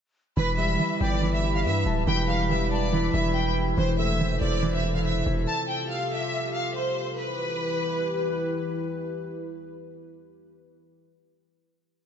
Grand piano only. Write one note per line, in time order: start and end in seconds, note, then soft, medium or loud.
0.37 0.78 E3 medium
0.58 1.65 G3 medium
0.79 1.20 E3 medium
1.22 2.06 E3 medium
1.43 2.50 E4 medium
2.07 2.48 E3 medium
2.28 3.35 G3 medium
2.50 2.91 E3 medium
2.92 3.76 E3 loud
3.14 3.77 E4 medium
3.77 4.19 E3 medium
3.99 5.05 A3 medium
4.20 4.61 E3 medium
4.63 5.48 E3 loud
4.84 5.48 E4 medium